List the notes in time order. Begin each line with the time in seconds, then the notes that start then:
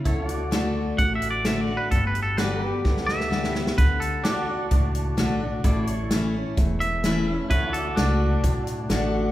0.05 D2 D3 E4 A4 C#5, kick, closed hi-hat
0.27 F#4 D5, closed hi-hat
0.51 D3 A3 D4 F#4, snare, closed hi-hat
0.98 A1 A2 F#5, kick, closed hi-hat
1.15 E5
1.22 closed hi-hat
1.30 D5
1.44 D3 A3 D4 F#4 E5, snare, closed hi-hat
1.61 D5
1.67 D4 F#4
1.77 B4
1.91 G1 G2 A4, kick, closed hi-hat
2.07 B4
2.15 closed hi-hat
2.23 A4
2.37 D3 G3 B3 F#4 G4 A4 B4, snare, closed hi-hat
2.41 D5
2.59 G4
2.63 B3 B4
2.85 D2 D3, kick, snare
2.97 snare
3.07 E5, snare
3.20 snare
3.30 D3 G3 B3 G4, snare
3.44 snare
3.54 B3 G4, snare
3.67 snare
3.78 D2 D3 B4, kick, closed hi-hat
4.00 A4, closed hi-hat
4.24 D3 A3 D4 F#4 G4 A4 D5, snare, closed hi-hat
4.45 F#4
4.49 D4
4.71 C#2 A2, kick, closed hi-hat
4.95 closed hi-hat
5.17 B1 D3 A3 D4 F#4, snare, closed hi-hat
5.40 D4 F#4
5.64 A1 A2 E4 A4 D5, kick, closed hi-hat
5.87 C#5, closed hi-hat
6.11 E3 A3 C#4 E4, snare, closed hi-hat
6.34 C#4 E4
6.57 E1 E2, kick, closed hi-hat
6.80 E5, closed hi-hat
7.03 E3 A3 C#4 E4, snare, closed hi-hat
7.27 C#4 E4
7.50 D2 D3 E4 A4 B4 C#5, kick, closed hi-hat
7.72 F#4 A4 D5, closed hi-hat
7.96 C#2 A3 D4 F#4, snare, closed hi-hat
8.44 B1 A2, kick, closed hi-hat
8.67 closed hi-hat
8.89 A1 D3 A3 D4 F#4, snare, closed hi-hat